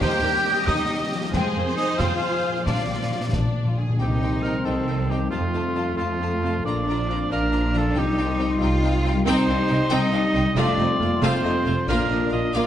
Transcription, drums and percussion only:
0.01 concert bass drum medium
0.01 snare medium
0.68 concert bass drum medium
0.68 snare medium
1.33 concert bass drum medium
1.33 snare medium
1.77 snare soft
1.99 concert bass drum medium
1.99 snare medium
2.67 concert bass drum medium
2.67 snare medium
3.33 concert bass drum medium
3.33 snare medium

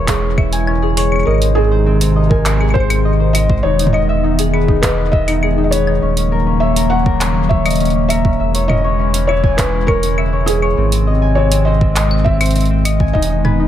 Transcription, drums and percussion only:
0.08 kick loud
0.08 clap loud
0.08 closed hi-hat loud
0.38 kick loud
0.38 claves medium
0.53 closed hi-hat medium
0.67 claves medium
0.97 closed hi-hat medium
1.12 claves soft
1.16 claves soft
1.19 claves soft
1.23 claves soft
1.27 claves soft
1.31 claves soft
1.34 claves soft
1.38 closed hi-hat medium
1.38 claves soft
2.01 closed hi-hat medium
2.31 kick loud
2.46 clap loud
2.46 closed hi-hat loud
2.61 claves soft
2.70 claves soft
2.75 kick loud
2.80 claves soft
2.90 closed hi-hat medium
2.90 claves medium
3.35 closed hi-hat medium
3.35 claves medium
3.50 kick loud
3.79 closed hi-hat medium
3.87 mid tom medium
3.94 claves soft
4.39 closed hi-hat medium
4.54 claves soft
4.68 kick loud
4.83 kick loud
4.83 clap loud
4.83 closed hi-hat medium
5.13 kick loud
5.28 closed hi-hat medium
5.28 claves medium
5.43 claves medium
5.72 closed hi-hat medium
5.87 claves soft
6.17 closed hi-hat medium
6.76 closed hi-hat medium
7.06 kick loud
7.21 clap loud
7.21 closed hi-hat medium
7.51 kick loud
7.66 closed hi-hat soft
7.66 claves medium
7.71 closed hi-hat soft
7.75 closed hi-hat soft
7.80 closed hi-hat soft
7.85 closed hi-hat soft
7.90 closed hi-hat soft
8.10 closed hi-hat medium
8.10 claves medium
8.25 kick loud
8.55 closed hi-hat medium
8.70 mid tom medium
8.70 claves soft
9.14 closed hi-hat medium
9.29 claves soft
9.44 kick loud
9.58 kick loud
9.58 clap loud
9.58 closed hi-hat medium
9.88 kick loud
9.88 claves medium
10.03 closed hi-hat soft
10.18 claves medium
10.48 closed hi-hat medium
10.62 claves soft
10.92 closed hi-hat medium
11.52 closed hi-hat medium
11.81 kick loud
11.96 clap loud
11.96 closed hi-hat medium
12.11 claves soft
12.26 kick loud
12.41 closed hi-hat soft
12.41 claves medium
12.46 closed hi-hat soft
12.51 closed hi-hat soft
12.56 closed hi-hat soft
12.61 closed hi-hat soft
12.65 closed hi-hat soft
12.85 closed hi-hat medium
12.85 claves medium
13.00 kick loud
13.15 kick medium
13.22 closed hi-hat medium
13.45 mid tom medium
13.45 claves soft

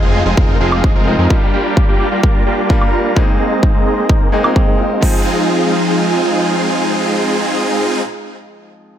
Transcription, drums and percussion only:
0.37 kick loud
0.72 high woodblock medium
0.84 kick loud
1.30 kick loud
1.77 kick loud
2.23 kick loud
2.70 kick loud
2.82 high woodblock medium
3.16 kick loud
3.63 kick loud
4.09 kick loud
4.44 high woodblock medium
4.56 kick loud
5.02 kick medium
5.02 open hi-hat medium

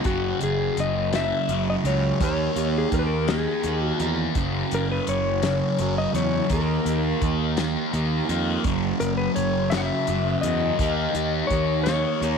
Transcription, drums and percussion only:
0.04 kick loud
0.04 closed hi-hat medium
0.41 closed hi-hat medium
0.77 closed hi-hat medium
1.13 snare medium
1.13 closed hi-hat medium
1.49 closed hi-hat medium
1.85 closed hi-hat medium
2.21 kick medium
2.21 closed hi-hat medium
2.56 closed hi-hat medium
2.92 kick medium
2.92 closed hi-hat medium
3.28 snare loud
3.28 closed hi-hat medium
3.63 closed hi-hat medium
4.00 closed hi-hat medium
4.35 kick medium
4.35 closed hi-hat medium
4.71 closed hi-hat medium
5.07 closed hi-hat medium
5.43 snare loud
5.43 closed hi-hat medium
5.78 closed hi-hat medium
6.15 closed hi-hat medium
6.50 kick medium
6.50 closed hi-hat medium
6.86 closed hi-hat medium
7.22 kick medium
7.22 closed hi-hat medium
7.57 snare loud
7.57 closed hi-hat medium
7.93 closed hi-hat soft
8.29 closed hi-hat medium
8.64 kick medium
8.64 closed hi-hat medium
9.01 closed hi-hat medium
9.36 closed hi-hat medium
9.71 snare loud
9.71 closed hi-hat medium
10.07 closed hi-hat medium
10.43 closed hi-hat medium
10.79 kick medium
10.79 closed hi-hat medium
11.15 closed hi-hat medium
11.50 kick medium
11.50 closed hi-hat medium
11.86 snare loud
11.86 closed hi-hat medium
12.22 closed hi-hat medium

